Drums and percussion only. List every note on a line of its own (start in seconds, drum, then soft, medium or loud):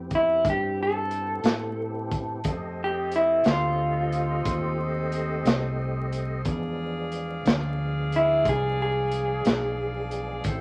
0.11 kick medium
0.11 closed hi-hat soft
0.45 kick loud
0.45 closed hi-hat medium
1.11 closed hi-hat medium
1.44 snare loud
1.44 closed hi-hat medium
2.11 kick medium
2.11 closed hi-hat medium
2.44 kick medium
2.44 closed hi-hat medium
3.12 closed hi-hat medium
3.44 snare loud
3.44 closed hi-hat medium
4.12 closed hi-hat medium
4.45 kick loud
4.45 closed hi-hat medium
5.12 closed hi-hat medium
5.45 snare loud
5.45 closed hi-hat medium
6.12 closed hi-hat medium
6.45 kick medium
6.45 closed hi-hat medium
7.12 closed hi-hat medium
7.46 snare loud
7.46 closed hi-hat medium
8.12 closed hi-hat medium
8.45 kick loud
8.45 closed hi-hat medium
9.11 closed hi-hat medium
9.45 snare loud
9.45 closed hi-hat medium
10.11 closed hi-hat medium
10.44 kick medium
10.44 closed hi-hat medium